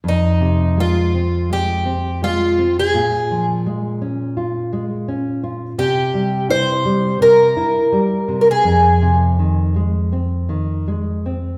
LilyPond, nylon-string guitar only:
\new Staff \with { instrumentName = "Nylon-string guitar" } { \clef bass \time 4/4 \key f \minor \tempo 4 = 83 f,8 c8 aes8 c'8 aes8 c'8 aes8 c'8 | bes,8 f8 aes8 des'8 f'8 aes8 des'8 f'8 | c8 g8 e'8 g8 c8 e'8 g8 c8 | f,8 c8 ees8 aes8 c'8 ees8 aes8 c'8 | }